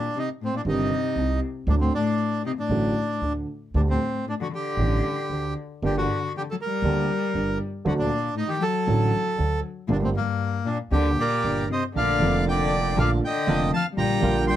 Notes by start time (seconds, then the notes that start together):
Already playing: A#2 D4
0.16 C3 D#4
0.42 A2 C4
0.54 A#2 D4
0.65 G1 G2 C3 D#3 G3 C4 D#4 G4
1.16 C2 C3
1.67 D2 A2 D3 F#3 A3 D4 F#4
1.81 A2 C4
1.94 A2 D4
2.45 C3 D#4
2.59 A2 D4
2.69 A1 A2 D3 F#3 A3 F#4
3.21 D2 D3
3.74 D2 A2 D3 G3 A3 D4 G4
3.88 A2 C4
4.26 A2 D4
4.40 D3 F#4
4.53 D3 G4
4.77 A1 A2 D3 G3 A3 G4
5.30 D2 D3
5.82 G1 G2 D3 G3 A#3 G4
5.97 D3 F#4
6.37 D3 G4
6.51 F#3 A4
6.62 G3 A#4
6.82 D2 D3 G3 A#3 G4
7.34 G1 G2
7.85 D2 D3 F#3 A3 F#4
7.99 A#2 D4
8.35 A2 D#4
8.47 D#3 G4
8.60 F#3 A4
8.87 A1 A2 D3 F#3 A3 F#4
9.38 D2 D3
9.88 G1 G2 A#2 D3 G3 A#3 D4 G4
10.00 A2 C4
10.14 G2 A#3
10.65 A#2 D4
10.92 D2 D3 G3 A#3 G4
11.18 A#2 A#4 D5
11.44 G1 G2
11.69 C3 D#5
11.73 C5
11.95 A#1 A#2 D3 A3 A#3 D4 F4 A4 D5 F5
12.20 F1 F2 D3 A3 A#3 D4 A4
12.24 F4
12.48 D3 D5 G5
12.96 A#1 A#2 D3 A3 A#3 D4 F4 A4 F5
13.00 D5
13.22 D3 G5
13.27 D#5
13.47 F1 F2 D3 A3 A#3 D4 F4 A4
13.71 F3 A5
13.76 F5
13.94 A#1 A#2 D3 G3 A#3 F4 G4 A#5
14.00 G5
14.20 A#1 A#2 D3 G3 A#3 F4 G4
14.47 G3 G5 C6